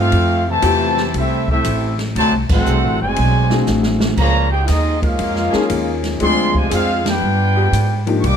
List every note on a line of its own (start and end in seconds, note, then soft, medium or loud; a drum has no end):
0.00 0.10 G2 loud
0.00 0.43 A3 medium
0.00 0.43 C4 medium
0.00 0.44 C4 medium
0.00 0.43 F4 medium
0.00 0.44 G4 medium
0.00 0.44 A4 medium
0.00 0.44 F5 loud
0.12 0.61 F2 loud
0.12 ride medium
0.47 1.10 C3 medium
0.47 1.10 E3 loud
0.47 1.10 A3 loud
0.47 1.11 G4 medium
0.47 1.11 C5 medium
0.47 1.11 E5 medium
0.47 1.11 A5 loud
0.61 1.12 E2 medium
0.61 1.40 E3 loud
0.61 1.41 A3 medium
0.61 0.93 A3 medium
0.61 0.93 C4 medium
0.61 1.41 E4 medium
0.61 0.94 E4 medium
0.61 0.94 F4 medium
0.61 1.40 G4 loud
0.61 0.94 G4 medium
0.61 hi-hat pedal medium
0.61 ride medium
0.97 snare soft
1.14 1.63 C2 medium
1.14 1.49 A3 medium
1.14 1.49 C4 medium
1.14 1.49 E4 medium
1.14 1.50 G4 medium
1.14 1.50 A4 medium
1.14 1.49 E5 loud
1.14 ride medium
1.48 1.97 A3 medium
1.48 1.96 C4 medium
1.48 1.97 C4 medium
1.48 1.97 E4 medium
1.48 1.97 G4 medium
1.48 1.97 A4 medium
1.48 1.96 E5 medium
1.48 kick medium
1.64 2.13 A1 loud
1.64 hi-hat pedal medium
1.64 ride medium
1.99 snare soft
1.99 ride medium
2.15 2.33 D2 loud
2.15 2.32 C3 medium
2.15 2.32 F#3 medium
2.15 2.32 A3 medium
2.15 2.33 F#4 loud
2.15 2.33 C5 loud
2.15 2.33 D5 loud
2.15 2.32 A5 loud
2.15 ride medium
2.32 2.49 C2 medium
2.49 2.65 A1 medium
2.49 2.98 A3 loud
2.49 2.97 C4 medium
2.49 2.97 D4 medium
2.49 2.98 F#4 medium
2.49 2.98 A4 medium
2.49 2.97 C5 medium
2.49 2.98 F#5 loud
2.49 kick loud
2.49 crash medium
2.66 2.84 C2 medium
2.66 3.44 F#3 medium
2.66 3.44 C4 medium
2.66 3.44 D4 medium
2.66 3.44 G#4 medium
2.66 hi-hat pedal medium
2.84 3.00 A1 medium
3.01 3.16 F#1 medium
3.01 3.64 A2 medium
3.01 3.64 G#3 medium
3.01 3.64 C4 medium
3.01 3.63 F#4 medium
3.01 3.64 C5 medium
3.01 3.63 D5 medium
3.01 3.63 G#5 loud
3.16 3.66 B1 medium
3.16 ride medium
3.50 4.14 A3 medium
3.50 4.14 C4 medium
3.50 4.15 D4 medium
3.50 4.15 F#4 medium
3.50 4.15 G#4 medium
3.50 snare medium
3.66 4.16 A1 loud
3.66 snare medium
3.66 hi-hat pedal medium
3.83 snare medium
4.00 snare loud
4.17 4.67 C#2 loud
4.17 4.50 A#2 loud
4.17 4.50 F3 loud
4.17 4.50 A#3 medium
4.17 4.50 G#4 loud
4.17 4.49 C#5 loud
4.17 4.50 F5 loud
4.17 4.50 A#5 loud
4.17 kick medium
4.17 crash medium
4.51 4.66 D#4 medium
4.51 4.67 G4 medium
4.51 4.67 G#4 medium
4.51 4.67 C5 medium
4.51 4.67 G5 medium
4.66 5.18 D#2 loud
4.66 5.03 C4 medium
4.66 5.02 D#4 medium
4.66 5.02 F4 medium
4.66 5.01 G#4 medium
4.66 5.03 D#5 loud
4.66 snare soft
4.66 hi-hat pedal medium
4.66 ride medium
5.01 5.99 G#3 medium
5.01 5.99 A#3 medium
5.01 6.00 C#4 medium
5.01 5.99 F4 medium
5.01 6.00 G#4 medium
5.01 6.00 A#4 medium
5.01 6.00 F5 medium
5.01 kick medium
5.01 ride medium
5.19 5.51 F2 medium
5.19 ride medium
5.36 snare soft
5.51 5.63 F3 loud
5.51 5.63 A#3 loud
5.51 6.17 A#3 medium
5.51 5.63 C#4 loud
5.51 6.17 C#4 medium
5.51 6.18 D#4 medium
5.51 6.18 F4 medium
5.51 5.63 G#4 loud
5.51 6.18 G#4 medium
5.51 muted upright bass stroke soft
5.51 snare medium
5.70 6.19 D#2 loud
5.70 hi-hat pedal medium
5.70 ride medium
6.03 snare soft
6.03 ride medium
6.19 6.70 D2 medium
6.19 6.52 F3 medium
6.19 6.43 F3 medium
6.19 6.52 G#3 loud
6.19 6.52 G#3 medium
6.19 6.52 C4 loud
6.19 6.44 C4 medium
6.19 6.51 C4 medium
6.19 6.43 D4 medium
6.19 6.52 D4 medium
6.19 6.52 F4 medium
6.19 6.43 G#4 medium
6.19 6.52 G#4 medium
6.19 6.54 G#4 loud
6.19 6.53 D5 loud
6.19 6.54 F5 loud
6.19 6.53 C6 loud
6.19 ride medium
6.54 6.71 C3 medium
6.54 6.71 F3 medium
6.54 6.69 G#3 medium
6.54 6.72 F4 medium
6.54 6.73 C5 medium
6.54 6.72 D5 medium
6.54 6.72 G#5 loud
6.54 kick medium
6.70 7.20 F2 loud
6.70 6.94 F3 medium
6.70 7.03 G#3 medium
6.70 6.94 C4 medium
6.70 7.03 C4 medium
6.70 6.93 D4 medium
6.70 7.04 D4 medium
6.70 7.03 F4 medium
6.70 6.94 G#4 loud
6.70 hi-hat pedal medium
6.70 ride medium
6.74 7.05 G#4 medium
6.74 7.05 C5 medium
6.74 7.05 F5 loud
7.04 8.06 B3 medium
7.04 8.06 D4 medium
7.04 8.06 G4 medium
7.04 snare medium
7.04 ride medium
7.09 8.09 F4 medium
7.09 8.08 B4 medium
7.09 8.09 D5 medium
7.09 8.09 G5 loud
7.22 7.71 G2 medium
7.56 7.67 F3 medium
7.56 7.67 G#3 medium
7.56 7.67 B3 loud
7.56 7.67 G4 loud
7.72 8.21 G#2 medium
7.72 hi-hat pedal medium
7.72 ride medium
8.06 8.21 F3 medium
8.06 8.21 A#3 medium
8.06 8.22 D4 medium
8.06 8.22 D#4 medium
8.06 8.22 G4 medium
8.06 ride medium
8.21 8.37 C2 medium
8.21 8.37 G3 loud
8.21 8.37 A#3 medium
8.21 8.37 D4 medium
8.21 8.24 C#6 medium
8.21 ride medium
8.26 8.37 A#4 loud
8.26 8.37 D#5 loud
8.26 8.37 G5 loud
8.26 8.37 D6 loud